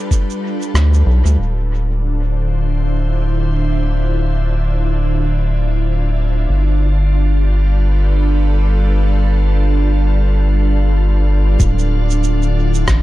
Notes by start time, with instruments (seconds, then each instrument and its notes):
Already playing: ambient pad G3 D4 F4 A4 B4
0.11 kick, shaker
0.30 shaker
0.62 shaker
0.74 analog synth bass D2, cross-stick, shaker
0.94 shaker
1.06 analog synth bass B1
1.25 analog synth bass D2, shaker
1.38 analog synth bass D1, ambient pad D3
1.65 ambient pad D4
1.71 ambient pad C5
1.85 ambient pad F4
1.97 ambient pad E4
6.49 analog synth bass G1, ambient pad G3
7.19 ambient pad B4
7.27 ambient pad A4
11.60 analog synth bass D1, ambient pad D3, kick, shaker
11.79 shaker
12.01 ambient pad E4
12.10 shaker
12.24 shaker
12.42 shaker
12.74 shaker
12.84 analog synth bass A1, ambient pad C5, kick, cross-stick, shaker